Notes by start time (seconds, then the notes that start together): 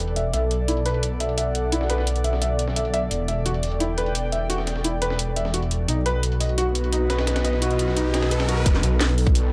Already playing: E1 G3 B3 E4 A4 D5 G5
0.08 closed hi-hat
0.16 E5, closed hi-hat
0.33 B1 D4 F#4 E5, closed hi-hat
0.51 closed hi-hat
0.68 E4, closed hi-hat
0.77 closed hi-hat
0.86 B4, closed hi-hat, open hi-hat
0.94 closed hi-hat
1.00 F#5, closed hi-hat
1.20 E5, closed hi-hat
1.29 closed hi-hat
1.38 E5, closed hi-hat
1.55 closed hi-hat
1.72 E4, closed hi-hat
1.81 snare
1.90 B4, snare, closed hi-hat
1.98 snare
2.07 closed hi-hat
2.16 closed hi-hat
2.24 E5, closed hi-hat
2.33 snare
2.42 E5, closed hi-hat
2.59 closed hi-hat
2.68 snare
2.76 E5, closed hi-hat
2.85 closed hi-hat
2.94 E5, closed hi-hat
3.11 E1 G3 E4 B4, closed hi-hat
3.28 E5, closed hi-hat
3.40 G5
3.46 F#4, closed hi-hat
3.54 closed hi-hat
3.63 closed hi-hat, open hi-hat
3.72 closed hi-hat
3.80 E4, closed hi-hat
3.98 B4, closed hi-hat
4.06 closed hi-hat
4.15 closed hi-hat
4.32 E5, closed hi-hat
4.50 F#4, closed hi-hat
4.58 snare
4.67 snare, closed hi-hat
4.76 snare
4.84 E4, closed hi-hat
5.02 B4, closed hi-hat
5.10 snare
5.19 closed hi-hat
5.36 E5, closed hi-hat
5.45 snare
5.54 F#4, closed hi-hat
5.62 closed hi-hat
5.71 closed hi-hat
5.88 B1 F#3 B3 D#4 F#4, closed hi-hat, riser
6.06 B4, closed hi-hat
6.22 B4, closed hi-hat
6.32 closed hi-hat
6.40 D#5, closed hi-hat, open hi-hat
6.49 closed hi-hat
6.58 F#4 D#5, closed hi-hat
6.75 closed hi-hat
6.84 closed hi-hat
6.92 D#4, closed hi-hat
7.10 B4, snare, closed hi-hat
7.19 snare, closed hi-hat
7.27 snare, closed hi-hat
7.36 snare, closed hi-hat
7.45 D#5, snare, closed hi-hat
7.53 snare
7.62 F#4, closed hi-hat
7.71 closed hi-hat
7.79 closed hi-hat
7.88 snare
7.97 D#4, closed hi-hat
8.14 D#4, snare, closed hi-hat
8.23 snare, closed hi-hat
8.31 B4, closed hi-hat
8.40 snare, closed hi-hat
8.49 F#4, closed hi-hat
8.57 closed hi-hat
8.66 E1 G3 B3 E4 A4 B4, kick, closed hi-hat
8.75 snare
8.83 B1, closed hi-hat
9.01 D5, snare, closed hi-hat
9.09 G5, closed hi-hat
9.18 closed hi-hat, open hi-hat
9.27 kick, closed hi-hat
9.35 closed hi-hat